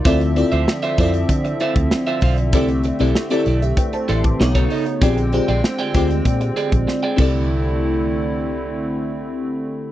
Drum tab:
CC |----------------|----------------|--------------x-|----------------|
HH |xxxx-xxxxxxx-xox|xxxx-xxxxxxx-xox|xxxx-xxxxxxx----|----------------|
SD |----o-------o---|----o-------o---|----o-------o---|----------------|
BD |o-----o-o--o--o-|o-------o--o-o--|o-----o-o--o--o-|----------------|